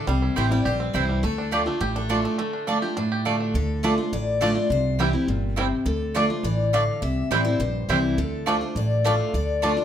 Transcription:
0.07 upright bass C2, steel-string acoustic guitar C3 C5, five-string banjo G3
0.22 five-string banjo E4
0.36 upright bass A1, steel-string acoustic guitar E3 G3 C4 E4 C5, mandolin C4 E4 C5 G5, five-string banjo G4
0.51 five-string banjo G3, steel-string acoustic guitar C4 E4 D5
0.65 upright bass A#1, steel-string acoustic guitar G2 C5, five-string banjo G4
0.80 five-string banjo C4
0.93 upright bass C2, steel-string acoustic guitar E3 G3 C4 E4 C5, mandolin C4 E4 C5 G5, five-string banjo E4
1.09 five-string banjo G3
1.23 upright bass D2, steel-string acoustic guitar D3 A4, five-string banjo A3
1.38 five-string banjo D4
1.51 steel-string acoustic guitar D3 A3 D4 F4, mandolin A3 F4 D5 A5, five-string banjo G4
1.66 five-string banjo A3, steel-string acoustic guitar D4 F4
1.80 upright bass A1, steel-string acoustic guitar A2 G4, five-string banjo G4
1.96 five-string banjo D4, steel-string acoustic guitar A4
2.09 steel-string acoustic guitar D3 A3 D4 F4 A4, mandolin A3 F4 D5 A5, five-string banjo D4
2.25 five-string banjo A3, steel-string acoustic guitar A4
2.38 steel-string acoustic guitar D3, five-string banjo A3
2.53 five-string banjo D4
2.67 steel-string acoustic guitar D3 A3 D4 F4, mandolin A3 F4 D5 A5, five-string banjo D4
2.82 steel-string acoustic guitar D4 F4, five-string banjo G4
2.97 steel-string acoustic guitar A2, five-string banjo D4
3.12 five-string banjo G4
3.25 steel-string acoustic guitar D3 A3 D4 F4, mandolin A3 F4 D5 A5, five-string banjo A3
3.40 five-string banjo D4
3.54 upright bass D2, steel-string acoustic guitar D3 A4
3.83 steel-string acoustic guitar D3 A3 D4 F4 C5, mandolin A3 F4 D5 A5, five-string banjo A3 D4
3.98 steel-string acoustic guitar D4 F4
4.12 upright bass A1, steel-string acoustic guitar A2 D5
4.41 steel-string acoustic guitar D3 A3 D4 F4 D5, mandolin A3 F4 D5 A5, five-string banjo A3 D4
4.55 steel-string acoustic guitar D4 F4
4.70 upright bass C2, steel-string acoustic guitar C3 C5
4.99 steel-string acoustic guitar E3 G3 C4 E4 G4, five-string banjo G3 C4 E4, mandolin C4 E4 C5 G5
5.13 steel-string acoustic guitar C4 E4
5.28 upright bass G1, steel-string acoustic guitar A#2
5.56 steel-string acoustic guitar C3, five-string banjo G3 C4 E4, mandolin C4 E4 C5 G5
5.85 upright bass D2, steel-string acoustic guitar D3 A4
6.15 steel-string acoustic guitar D3 A3 D4 F4 C5, mandolin A3 F4 D5 A5, five-string banjo A3 D4
6.30 steel-string acoustic guitar D4 F4
6.43 upright bass A1, steel-string acoustic guitar E3 D5
6.73 steel-string acoustic guitar D3 F5, mandolin A3 F4 D5 A5, five-string banjo A3 D4
7.02 upright bass C2, steel-string acoustic guitar C3 E5
7.31 upright bass A1, steel-string acoustic guitar E3 G3 C4 E4 D5, five-string banjo G3 C4 E4, mandolin C4 E4 C5 G5
7.45 steel-string acoustic guitar C4 E4 C5
7.60 upright bass A#1, steel-string acoustic guitar G2 C5
7.89 upright bass C2, steel-string acoustic guitar E3 G3 C4 E4, five-string banjo G3 C4 E4, mandolin C4 E4 C5 G5
8.18 upright bass D2, steel-string acoustic guitar D3 A4
8.46 steel-string acoustic guitar D3 A3 D4 F4 C5, mandolin A3 F4 D5 A5, five-string banjo A3 D4
8.61 steel-string acoustic guitar D4 F4
8.75 upright bass A1, steel-string acoustic guitar A2 D5
9.04 steel-string acoustic guitar D3 A3 D4 F4 F5, mandolin A3 F4 D5 A5, five-string banjo A3 D4
9.34 upright bass D2, steel-string acoustic guitar D3 D5
9.62 steel-string acoustic guitar D3 A3 D4 F4 D5, mandolin A3 F4 D5 A5, five-string banjo A3 D4
9.77 steel-string acoustic guitar D4 F4

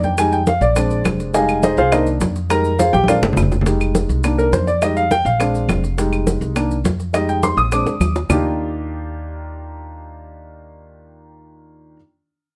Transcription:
Already playing: upright bass F2, grand piano D#3 A#3 D4
0.03 grand piano G5, high bongo, high conga, maracas
0.18 grand piano G3 G#3 D#4 G#5, high bongo, high conga, claves, maracas
0.32 grand piano G5, high conga, maracas
0.47 grand piano F5, high bongo, high conga, maracas
0.61 upright bass A#1, grand piano D5, high bongo, high conga, maracas
0.76 grand piano G#3 C4 D4, high bongo, high conga, claves, maracas
0.90 high bongo, high conga, maracas
1.04 upright bass F1, high bongo, low bongo, high conga, claves, maracas
1.20 high bongo, high conga, maracas
1.33 grand piano G3 G#3 D#4 G#4 D#5 F5 G#5, high bongo, high conga, maracas
1.49 high bongo, high conga, claves, maracas
1.63 grand piano D#4 G#4 C5 D#5, high bongo, high conga, maracas
1.77 upright bass C2, grand piano F4 G#4 C5 F5, high bongo, high conga, maracas
1.91 grand piano D#3 A#3 D4 D#4 A#4 C5 D#5, high bongo, high conga, claves, maracas
2.06 high conga, maracas
2.20 upright bass F2, high bongo, low bongo, high conga, maracas
2.36 high bongo, maracas
2.50 grand piano G3 G#3 D#4 A#4 A#5, high bongo, high conga, claves, maracas
2.65 high conga, maracas
2.79 grand piano F4 G#4 C5 F5, high bongo, high conga, maracas
2.93 upright bass A#1, grand piano G4 G5, high bongo, high conga, maracas
3.04 grand piano G#3, high conga
3.08 grand piano C4 D4 F4 A#4 D5 F5, high bongo, claves, maracas
3.22 upright bass G1, high bongo, low conga, maracas
3.33 upright bass F1, low conga
3.37 low bongo, claves, maracas
3.42 low conga
3.52 low bongo, low conga, maracas
3.61 low conga
3.65 grand piano G3 G#3 D#4, high bongo, high conga, maracas
3.80 high bongo, high conga, claves, maracas
3.95 high bongo, high conga, maracas
4.09 upright bass C2, high bongo, high conga, maracas
4.24 grand piano D#3 A#3 D4, high bongo, high conga, claves, maracas
4.38 grand piano A#4, high conga, maracas
4.52 upright bass F2, grand piano C5, high bongo, low bongo, high conga, maracas
4.67 grand piano D5, high bongo, maracas
4.82 grand piano G3 G#3 D#4 D#5, high bongo, high conga, claves, maracas
4.97 grand piano F5, high conga, maracas
5.11 grand piano G5, high bongo, high conga, maracas
5.25 upright bass A#1, grand piano F5, high bongo, high conga, maracas
5.39 grand piano G#3 C4 D4, high bongo, high conga, claves, maracas
5.55 high bongo, high conga, maracas
5.68 upright bass F1, high bongo, low bongo, high conga, claves, maracas
5.84 high bongo, high conga, maracas
5.98 grand piano G3 G#3 D#4, high bongo, high conga, maracas
6.13 high bongo, high conga, claves, maracas
6.27 high bongo, high conga, maracas
6.41 upright bass C2, high bongo, high conga, maracas
6.55 grand piano D#3 A#3 D4, high bongo, high conga, claves, maracas
6.71 high conga, maracas
6.84 upright bass F2, high bongo, low bongo, high conga, maracas
7.00 high bongo, maracas
7.13 grand piano G3 G#3 D#4 D#5, high bongo, high conga, claves, maracas
7.29 grand piano G5, high conga, maracas
7.43 grand piano C6, high bongo, high conga, maracas
7.57 upright bass A#1, grand piano D#6, high bongo, high conga, maracas
7.72 grand piano G#3 C4 D4 D6, high bongo, high conga, claves, maracas
7.86 upright bass D2, high bongo, high conga, maracas
8.00 upright bass D#2, low bongo, high conga, claves, maracas
8.16 low bongo, maracas
8.29 upright bass D#2, grand piano D#3 A#3 D4 D#4 F4 G4, low bongo, low conga, claves, maracas

